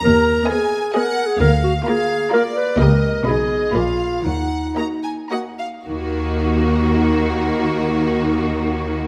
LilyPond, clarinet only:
\new Staff \with { instrumentName = "Clarinet" } { \time 3/4 \key ees \minor \tempo 4 = 116 bes'4 aes'4 \tuplet 3/2 { bes'4 aes'8 } | bes'8 ges'8 aes'4 bes'8 ces''8 | bes'4 aes'4 f'4 | ees'2~ ees'8 r8 |
ees'2.~ | ees'2. | }